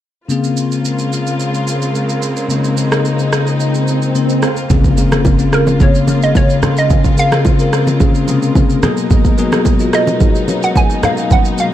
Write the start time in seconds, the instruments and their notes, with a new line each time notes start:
0.28 tine electric piano C#3 A#3 C4 G#4, string section C#3 G#3 A#3 C4 F4, swell, shaker
0.44 shaker
0.57 shaker
0.72 shaker
0.85 shaker
0.99 shaker
1.13 shaker
1.27 shaker
1.40 shaker
1.54 shaker
1.68 shaker
1.82 shaker
1.95 shaker
2.09 shaker
2.23 shaker
2.37 shaker
2.49 tine electric piano C#3 A#3 C4 F4, string section D#4, shaker
2.64 shaker
2.77 shaker
2.92 cross-stick, shaker
3.05 shaker
3.19 shaker
3.33 cross-stick, shaker
3.47 shaker
3.60 shaker
3.75 shaker
3.88 shaker
4.02 shaker
4.15 tine electric piano C#3 A#3 C4 A#4, shaker
4.29 shaker
4.43 string section F4, cross-stick, shaker
4.57 shaker
4.70 tine electric piano C#3 A#3 C4 G#4, string section C#3 G#3 A#3 F4 A#4, kick, impact, low conga, shaker
4.84 kick, shaker
4.97 tine electric piano C#3 A#3 C4 A#4, shaker
5.12 cross-stick, low bongo, shaker
5.25 kick, high bongo, shaker
5.39 tine electric piano C#3 A#3 C4 F4, shaker
5.53 synth pluck A#4, cross-stick, shaker
5.67 low bongo, shaker
5.80 tine electric piano C#3 A#3 C4 G#4, synth pluck C#5, kick, low conga, shaker
5.95 shaker
6.07 tine electric piano C#3 A#3 C4 A#4, low bongo, shaker
6.22 synth pluck D#5, shaker
6.35 synth pluck C#5, kick, high bongo, shaker
6.50 shaker
6.62 tine electric piano C#3 A#3 C4 F4, cross-stick, low conga, shaker
6.77 synth pluck D#5, shaker
6.90 tine electric piano C#3 A#3 C4 G#4, string section C4, kick, low conga, shaker
7.04 kick, shaker
7.17 tine electric piano C#3 A#3 C4 F4, synth pluck F5, shaker
7.32 cross-stick, low bongo, shaker
7.45 kick, high bongo, shaker
7.59 tine electric piano C#3 A#3 C4 A#4, shaker
7.73 cross-stick, shaker
7.87 low bongo, shaker
8.00 tine electric piano C#3 A#3 C4 G#4, kick, low conga, shaker
8.15 shaker
8.28 tine electric piano C3 A#3 C4 G#4, low bongo, shaker
8.34 tine electric piano C#3
8.43 shaker
8.55 kick, high bongo, shaker
8.70 shaker
8.82 string section B2 F#3 D#4, tine electric piano F#3 A#3 B3 G#4, cross-stick, low conga, shaker
8.97 shaker
9.11 kick, low conga, shaker
9.25 kick, shaker
9.38 tine electric piano F#3 A#3 B3 G#4, shaker
9.52 cross-stick, low bongo, shaker
9.65 kick, high bongo, shaker
9.79 tine electric piano F#3 A#3 B3 F4, shaker
9.93 synth pluck D#5, cross-stick, shaker
10.07 low bongo, shaker
10.20 tine electric piano F#3 A#3 B3 D#4, kick, low conga, shaker
10.35 shaker
10.48 tine electric piano F#3 A#3 B3 C#4, low bongo, shaker
10.63 synth pluck F#5, shaker
10.76 synth pluck G#5, kick, high bongo, shaker
10.90 shaker
11.03 tine electric piano F#3 A#3 B3 C#4, synth pluck F5, cross-stick, low conga, shaker
11.17 shaker
11.30 tine electric piano F#3 A#3 B3 B4, synth pluck F#5, kick, low conga, shaker
11.45 shaker
11.58 tine electric piano F#3 A#3 B3 A#4, synth pluck F5, shaker